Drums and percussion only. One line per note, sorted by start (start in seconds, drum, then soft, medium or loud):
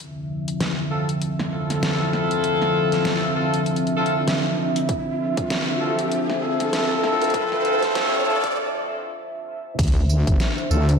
0.48 closed hi-hat medium
0.61 snare loud
0.61 closed hi-hat medium
1.09 closed hi-hat medium
1.22 closed hi-hat medium
1.39 snare medium
1.70 snare soft
1.70 closed hi-hat medium
1.83 snare loud
1.83 closed hi-hat medium
2.13 snare medium
2.31 closed hi-hat soft
2.44 closed hi-hat medium
2.62 snare soft
2.92 snare soft
2.92 closed hi-hat medium
3.05 snare loud
3.05 snare soft
3.05 closed hi-hat medium
3.54 closed hi-hat medium
3.66 closed hi-hat medium
3.76 closed hi-hat soft
3.87 closed hi-hat soft
4.06 closed hi-hat medium
4.28 snare loud
4.28 closed hi-hat medium
4.76 closed hi-hat medium
4.89 kick loud
4.89 closed hi-hat medium
5.37 kick loud
5.37 closed hi-hat medium
5.50 snare loud
5.50 closed hi-hat medium
5.99 closed hi-hat medium
6.12 closed hi-hat medium
6.30 snare medium
6.60 snare soft
6.60 closed hi-hat medium
6.73 snare loud
6.73 closed hi-hat medium
7.04 snare medium
7.22 closed hi-hat soft
7.24 closed hi-hat soft
7.30 kick loud
7.30 closed hi-hat soft
7.34 closed hi-hat medium
7.52 snare medium
7.65 closed hi-hat soft
7.82 kick medium
7.82 snare soft
7.82 closed hi-hat medium
7.95 snare loud
7.95 snare soft
7.95 closed hi-hat medium
8.44 kick loud
8.44 closed hi-hat medium
9.79 kick loud
9.79 closed hi-hat medium
9.79 tambourine soft
9.79 crash loud
9.83 closed hi-hat soft
9.88 closed hi-hat soft
9.92 closed hi-hat soft
9.97 tambourine soft
10.09 tambourine medium
10.27 kick loud
10.27 closed hi-hat medium
10.27 tambourine soft
10.40 snare loud
10.40 closed hi-hat medium
10.40 tambourine soft
10.58 tambourine soft
10.71 tambourine medium
10.89 closed hi-hat medium
10.89 tambourine soft